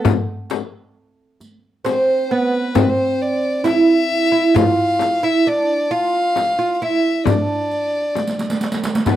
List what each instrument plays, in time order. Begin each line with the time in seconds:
0.05 riq, frame drum, darbuka dum
0.50 riq, darbuka tek, frame drum
1.40 riq, darbuka ka
1.85 oud C4, violin C5, riq, darbuka tek, frame drum
2.31 oud B3, violin B4, darbuka ka
2.75 oud C4, violin C5, riq, frame drum, darbuka dum
2.83 violin B4
2.90 violin C5
3.21 violin D5
3.64 oud E4, violin E5, riq, darbuka tek, frame drum
4.11 darbuka ka
4.32 oud E4
4.54 oud F4, violin F5, riq, darbuka dum, frame drum
4.99 riq, darbuka tek, frame drum
5.23 oud E4, violin E5
5.46 oud D4, violin D5, riq
5.91 oud F4, violin F5, darbuka ka
6.36 riq, darbuka tek, frame drum
6.59 oud F4
6.75 violin F5
6.82 oud E4, violin E5, riq, darbuka ka
7.26 oud D4, violin D5, riq, frame drum, darbuka dum
7.71 riq, darbuka ka
8.15 riq, darbuka tek, frame drum
8.27 riq, darbuka ka
8.39 riq, darbuka tek
8.50 riq, darbuka ka
8.61 riq, darbuka tek
8.72 riq, darbuka ka
8.84 riq, darbuka tek
8.95 riq, darbuka ka
9.06 oud B3, violin B4, riq, darbuka dum, frame drum